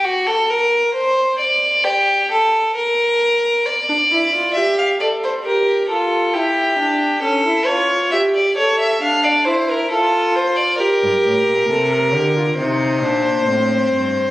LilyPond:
<<
  \new Staff \with { instrumentName = "Violin" } { \time 4/4 \key d \phrygian \tempo 4 = 67 fis'16 a'16 bes'8 c''8 d''8 g'8 a'8 bes'4 | d''4 e''16 f''16 d''16 c''16 bes'8 a'8 g'4 | a'8 cis''8 e''16 d''16 cis''16 e''16 f''16 d''16 c''16 bes'16 a'8 c''16 d''16 | bes'2 c''2 | }
  \new Staff \with { instrumentName = "Viola" } { \time 4/4 \key d \phrygian r1 | r16 d'16 e'16 f'16 g'8 a'8 g'8 f'8 e'8 d'8 | cis'16 e'16 f'8 g'8 a'8 d'8 e'8 f'4 | g'4 a'16 bes'16 g'16 f'16 ees'8 d'8 c'4 | }
  \new Staff \with { instrumentName = "Cello" } { \clef bass \time 4/4 \key d \phrygian r1 | r1 | r1 | r16 g,16 a,16 bes,16 c8 d8 c8 bes,8 a,8 g,8 | }
>>